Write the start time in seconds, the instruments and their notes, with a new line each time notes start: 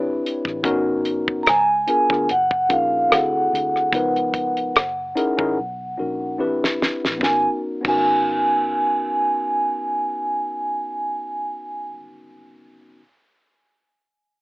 Already playing: fingered electric bass A1, tine electric piano C4 D4 E4 G4 B4
0.26 closed hi-hat
0.45 fingered electric bass A1, kick, cross-stick
0.63 fingered electric bass G#1, tine electric piano B3 C#4 D#4 F#4 A#4, kick, closed hi-hat
1.05 closed hi-hat
1.28 kick
1.43 vibraphone A#5, closed hi-hat
1.47 fingered electric bass C#2, vibraphone G#5, cross-stick
1.87 tine electric piano B3 D4 F4 G#4 A#4, closed hi-hat
2.09 fingered electric bass D2, tine electric piano B3 D4 F4 G#4 A#4, kick, cross-stick
2.29 fingered electric bass F#1, vibraphone F#5, closed hi-hat
2.51 kick
2.69 fingered electric bass A#1, tine electric piano C#4 D#4 F4 G#4 A#4, vibraphone F5, kick, closed hi-hat
3.10 fingered electric bass D2, tine electric piano C4 E4 F#4 G#4 A4, vibraphone F#5, cross-stick, closed hi-hat
3.53 fingered electric bass D2, closed hi-hat
3.76 cross-stick
3.93 fingered electric bass C#2, tine electric piano F3 B3 D#4 A#4 B4, kick, closed hi-hat
4.16 closed hi-hat
4.34 kick, closed hi-hat
4.57 closed hi-hat
4.76 fingered electric bass F#1, cross-stick, closed hi-hat
5.16 tine electric piano C#4 D#4 E4 G#4 A#4, closed hi-hat
5.38 fingered electric bass G#1, tine electric piano C#4 D#4 E4 G#4 A#4, kick
5.59 fingered electric bass B1
5.98 fingered electric bass A#1, tine electric piano C#4 D#4 F#4 A#4
6.38 fingered electric bass A1, tine electric piano C4 D4 E4 G4 B4
6.64 snare
6.82 snare
7.05 fingered electric bass A1, snare
7.17 tine electric piano B3 C#4, kick
7.22 fingered electric bass G#1, tine electric piano D#4 F#4, vibraphone G#5, snare
7.26 tine electric piano A#4
7.81 tine electric piano B3 C#4, crash
7.85 fingered electric bass G#1, tine electric piano D#4 F#4, vibraphone G#5, kick
7.90 tine electric piano A#4